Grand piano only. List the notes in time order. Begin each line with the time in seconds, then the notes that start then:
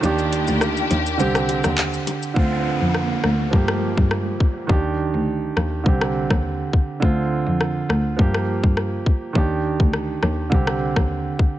0.01 D#3 D4
0.05 G4
1.18 D3 C4
1.22 G4
2.34 D3 C4
2.39 F4
3.51 F3 A#3
3.55 G4
4.67 D#3 D4
4.72 G4
5.84 D3 C4
5.88 G4
7.00 D3 C4
7.05 F4
8.17 F3 A#3
8.21 G4
9.33 D#3 D4
9.38 G4
10.50 D3 C4
10.54 G4